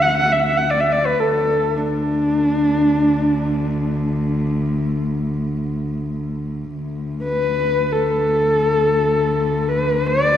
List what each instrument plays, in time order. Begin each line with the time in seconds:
Already playing: cello D2
0.02 horsehead fiddle F#5
0.17 horsehead fiddle F#5
0.32 horsehead fiddle E5
0.46 horsehead fiddle E5
0.57 horsehead fiddle F#5
0.70 horsehead fiddle D5
0.80 horsehead fiddle E5
0.92 horsehead fiddle D5
1.06 horsehead fiddle B4
1.20 horsehead fiddle A4
1.27 cello D2
1.76 horsehead fiddle D4
6.75 cello D2
7.23 horsehead fiddle B4
7.92 horsehead fiddle A4
9.69 horsehead fiddle B4
10.07 horsehead fiddle D5